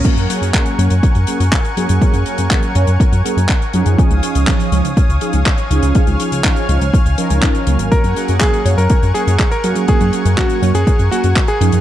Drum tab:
CC |x---------------|----------------|----------------|----------------|
HH |xxxxxxxxxxxxxxxx|xxxxxxxxxxxxxxxx|xxxxxxxxxxxxxxxx|xxxxxxxxxxxxxxxx|
CP |----x-------x---|----x-------x---|----x-------x---|----x-------x---|
BD |o---o---o---o---|o---o---o---o---|o---o---o---o---|o---o---o---o---|

CC |----------------|----------------|
HH |xxxxxxxxxxxxxxxx|xxxxxxxxxxxxxxxx|
CP |----x-------x---|----x-------x---|
BD |o---o---o---o---|o---o---o---o---|